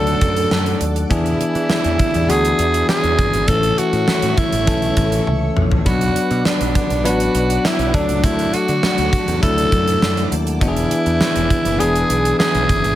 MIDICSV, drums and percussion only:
0, 0, Header, 1, 2, 480
1, 0, Start_track
1, 0, Tempo, 594059
1, 894, Time_signature, 4, 2, 24, 8
1, 10465, End_track
2, 0, Start_track
2, 0, Title_t, "Drums"
2, 55, Note_on_c, 9, 42, 49
2, 136, Note_off_c, 9, 42, 0
2, 172, Note_on_c, 9, 42, 65
2, 174, Note_on_c, 9, 36, 90
2, 253, Note_off_c, 9, 42, 0
2, 254, Note_off_c, 9, 36, 0
2, 295, Note_on_c, 9, 42, 54
2, 376, Note_off_c, 9, 42, 0
2, 415, Note_on_c, 9, 38, 94
2, 496, Note_off_c, 9, 38, 0
2, 534, Note_on_c, 9, 42, 40
2, 615, Note_off_c, 9, 42, 0
2, 652, Note_on_c, 9, 42, 64
2, 733, Note_off_c, 9, 42, 0
2, 775, Note_on_c, 9, 42, 42
2, 856, Note_off_c, 9, 42, 0
2, 894, Note_on_c, 9, 36, 98
2, 895, Note_on_c, 9, 42, 88
2, 974, Note_off_c, 9, 36, 0
2, 975, Note_off_c, 9, 42, 0
2, 1016, Note_on_c, 9, 42, 49
2, 1097, Note_off_c, 9, 42, 0
2, 1136, Note_on_c, 9, 42, 71
2, 1217, Note_off_c, 9, 42, 0
2, 1254, Note_on_c, 9, 42, 39
2, 1335, Note_off_c, 9, 42, 0
2, 1370, Note_on_c, 9, 38, 103
2, 1451, Note_off_c, 9, 38, 0
2, 1490, Note_on_c, 9, 42, 50
2, 1570, Note_off_c, 9, 42, 0
2, 1610, Note_on_c, 9, 42, 58
2, 1612, Note_on_c, 9, 36, 86
2, 1691, Note_off_c, 9, 42, 0
2, 1693, Note_off_c, 9, 36, 0
2, 1731, Note_on_c, 9, 42, 49
2, 1812, Note_off_c, 9, 42, 0
2, 1855, Note_on_c, 9, 42, 76
2, 1936, Note_off_c, 9, 42, 0
2, 1977, Note_on_c, 9, 42, 48
2, 2058, Note_off_c, 9, 42, 0
2, 2091, Note_on_c, 9, 42, 63
2, 2172, Note_off_c, 9, 42, 0
2, 2215, Note_on_c, 9, 42, 50
2, 2296, Note_off_c, 9, 42, 0
2, 2334, Note_on_c, 9, 38, 103
2, 2415, Note_off_c, 9, 38, 0
2, 2453, Note_on_c, 9, 42, 38
2, 2534, Note_off_c, 9, 42, 0
2, 2574, Note_on_c, 9, 36, 84
2, 2575, Note_on_c, 9, 42, 61
2, 2655, Note_off_c, 9, 36, 0
2, 2655, Note_off_c, 9, 42, 0
2, 2695, Note_on_c, 9, 42, 43
2, 2775, Note_off_c, 9, 42, 0
2, 2811, Note_on_c, 9, 42, 89
2, 2814, Note_on_c, 9, 36, 100
2, 2891, Note_off_c, 9, 42, 0
2, 2894, Note_off_c, 9, 36, 0
2, 2934, Note_on_c, 9, 42, 49
2, 3015, Note_off_c, 9, 42, 0
2, 3055, Note_on_c, 9, 42, 72
2, 3136, Note_off_c, 9, 42, 0
2, 3176, Note_on_c, 9, 42, 42
2, 3256, Note_off_c, 9, 42, 0
2, 3294, Note_on_c, 9, 38, 99
2, 3375, Note_off_c, 9, 38, 0
2, 3413, Note_on_c, 9, 42, 52
2, 3494, Note_off_c, 9, 42, 0
2, 3534, Note_on_c, 9, 42, 57
2, 3536, Note_on_c, 9, 36, 84
2, 3615, Note_off_c, 9, 42, 0
2, 3617, Note_off_c, 9, 36, 0
2, 3656, Note_on_c, 9, 42, 52
2, 3737, Note_off_c, 9, 42, 0
2, 3776, Note_on_c, 9, 42, 79
2, 3777, Note_on_c, 9, 36, 90
2, 3857, Note_off_c, 9, 42, 0
2, 3858, Note_off_c, 9, 36, 0
2, 3896, Note_on_c, 9, 42, 48
2, 3977, Note_off_c, 9, 42, 0
2, 4013, Note_on_c, 9, 42, 64
2, 4015, Note_on_c, 9, 36, 89
2, 4094, Note_off_c, 9, 42, 0
2, 4096, Note_off_c, 9, 36, 0
2, 4138, Note_on_c, 9, 42, 56
2, 4219, Note_off_c, 9, 42, 0
2, 4260, Note_on_c, 9, 48, 53
2, 4341, Note_off_c, 9, 48, 0
2, 4497, Note_on_c, 9, 45, 71
2, 4578, Note_off_c, 9, 45, 0
2, 4618, Note_on_c, 9, 43, 81
2, 4698, Note_off_c, 9, 43, 0
2, 4734, Note_on_c, 9, 42, 82
2, 4736, Note_on_c, 9, 36, 99
2, 4815, Note_off_c, 9, 42, 0
2, 4817, Note_off_c, 9, 36, 0
2, 4857, Note_on_c, 9, 42, 49
2, 4938, Note_off_c, 9, 42, 0
2, 4977, Note_on_c, 9, 42, 69
2, 5058, Note_off_c, 9, 42, 0
2, 5096, Note_on_c, 9, 42, 44
2, 5176, Note_off_c, 9, 42, 0
2, 5215, Note_on_c, 9, 38, 98
2, 5296, Note_off_c, 9, 38, 0
2, 5338, Note_on_c, 9, 42, 49
2, 5419, Note_off_c, 9, 42, 0
2, 5457, Note_on_c, 9, 36, 86
2, 5458, Note_on_c, 9, 42, 55
2, 5538, Note_off_c, 9, 36, 0
2, 5539, Note_off_c, 9, 42, 0
2, 5578, Note_on_c, 9, 42, 47
2, 5659, Note_off_c, 9, 42, 0
2, 5700, Note_on_c, 9, 42, 79
2, 5781, Note_off_c, 9, 42, 0
2, 5818, Note_on_c, 9, 42, 50
2, 5899, Note_off_c, 9, 42, 0
2, 5937, Note_on_c, 9, 42, 60
2, 6017, Note_off_c, 9, 42, 0
2, 6060, Note_on_c, 9, 42, 55
2, 6141, Note_off_c, 9, 42, 0
2, 6180, Note_on_c, 9, 38, 101
2, 6261, Note_off_c, 9, 38, 0
2, 6296, Note_on_c, 9, 42, 37
2, 6376, Note_off_c, 9, 42, 0
2, 6416, Note_on_c, 9, 36, 81
2, 6418, Note_on_c, 9, 42, 66
2, 6496, Note_off_c, 9, 36, 0
2, 6499, Note_off_c, 9, 42, 0
2, 6536, Note_on_c, 9, 42, 47
2, 6616, Note_off_c, 9, 42, 0
2, 6655, Note_on_c, 9, 36, 106
2, 6655, Note_on_c, 9, 42, 86
2, 6736, Note_off_c, 9, 36, 0
2, 6736, Note_off_c, 9, 42, 0
2, 6778, Note_on_c, 9, 42, 47
2, 6859, Note_off_c, 9, 42, 0
2, 6896, Note_on_c, 9, 42, 73
2, 6977, Note_off_c, 9, 42, 0
2, 7016, Note_on_c, 9, 42, 41
2, 7097, Note_off_c, 9, 42, 0
2, 7136, Note_on_c, 9, 38, 104
2, 7216, Note_off_c, 9, 38, 0
2, 7254, Note_on_c, 9, 42, 52
2, 7335, Note_off_c, 9, 42, 0
2, 7375, Note_on_c, 9, 36, 85
2, 7376, Note_on_c, 9, 42, 59
2, 7456, Note_off_c, 9, 36, 0
2, 7457, Note_off_c, 9, 42, 0
2, 7497, Note_on_c, 9, 42, 48
2, 7578, Note_off_c, 9, 42, 0
2, 7617, Note_on_c, 9, 36, 89
2, 7620, Note_on_c, 9, 42, 79
2, 7698, Note_off_c, 9, 36, 0
2, 7701, Note_off_c, 9, 42, 0
2, 7740, Note_on_c, 9, 42, 50
2, 7820, Note_off_c, 9, 42, 0
2, 7856, Note_on_c, 9, 36, 91
2, 7856, Note_on_c, 9, 42, 63
2, 7936, Note_off_c, 9, 36, 0
2, 7936, Note_off_c, 9, 42, 0
2, 7979, Note_on_c, 9, 42, 53
2, 8060, Note_off_c, 9, 42, 0
2, 8100, Note_on_c, 9, 38, 105
2, 8180, Note_off_c, 9, 38, 0
2, 8219, Note_on_c, 9, 42, 39
2, 8300, Note_off_c, 9, 42, 0
2, 8339, Note_on_c, 9, 42, 65
2, 8420, Note_off_c, 9, 42, 0
2, 8458, Note_on_c, 9, 42, 43
2, 8538, Note_off_c, 9, 42, 0
2, 8576, Note_on_c, 9, 36, 108
2, 8578, Note_on_c, 9, 42, 83
2, 8657, Note_off_c, 9, 36, 0
2, 8659, Note_off_c, 9, 42, 0
2, 8698, Note_on_c, 9, 42, 51
2, 8779, Note_off_c, 9, 42, 0
2, 8816, Note_on_c, 9, 42, 73
2, 8897, Note_off_c, 9, 42, 0
2, 8937, Note_on_c, 9, 42, 40
2, 9018, Note_off_c, 9, 42, 0
2, 9055, Note_on_c, 9, 38, 102
2, 9136, Note_off_c, 9, 38, 0
2, 9176, Note_on_c, 9, 42, 49
2, 9256, Note_off_c, 9, 42, 0
2, 9296, Note_on_c, 9, 36, 83
2, 9296, Note_on_c, 9, 42, 57
2, 9376, Note_off_c, 9, 36, 0
2, 9377, Note_off_c, 9, 42, 0
2, 9416, Note_on_c, 9, 42, 48
2, 9496, Note_off_c, 9, 42, 0
2, 9537, Note_on_c, 9, 42, 79
2, 9618, Note_off_c, 9, 42, 0
2, 9660, Note_on_c, 9, 42, 46
2, 9741, Note_off_c, 9, 42, 0
2, 9776, Note_on_c, 9, 42, 66
2, 9857, Note_off_c, 9, 42, 0
2, 9900, Note_on_c, 9, 42, 54
2, 9981, Note_off_c, 9, 42, 0
2, 10018, Note_on_c, 9, 38, 99
2, 10099, Note_off_c, 9, 38, 0
2, 10137, Note_on_c, 9, 42, 40
2, 10218, Note_off_c, 9, 42, 0
2, 10257, Note_on_c, 9, 36, 83
2, 10260, Note_on_c, 9, 42, 62
2, 10337, Note_off_c, 9, 36, 0
2, 10340, Note_off_c, 9, 42, 0
2, 10377, Note_on_c, 9, 42, 47
2, 10458, Note_off_c, 9, 42, 0
2, 10465, End_track
0, 0, End_of_file